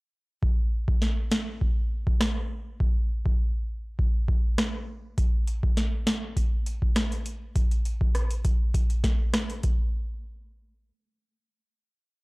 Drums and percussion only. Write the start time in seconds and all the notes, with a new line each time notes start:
0.43 kick
0.88 kick
1.02 snare
1.32 snare
1.61 kick
2.07 kick
2.21 cross-stick, snare
2.80 kick
3.26 kick
3.99 kick
4.28 kick
4.58 cross-stick, snare
5.18 kick, closed hi-hat
5.47 closed hi-hat
5.63 kick
5.77 snare, closed hi-hat
6.07 snare, closed hi-hat
6.37 kick, closed hi-hat
6.66 closed hi-hat
6.82 kick
6.96 cross-stick, snare, closed hi-hat
7.12 closed hi-hat
7.26 closed hi-hat
7.56 kick, closed hi-hat
7.71 closed hi-hat
7.85 closed hi-hat
8.01 kick
8.15 cross-stick, closed hi-hat
8.31 closed hi-hat
8.45 kick, closed hi-hat
8.74 kick, closed hi-hat
8.90 closed hi-hat
9.04 kick, snare, closed hi-hat
9.34 cross-stick, snare, closed hi-hat
9.50 closed hi-hat
9.63 kick, closed hi-hat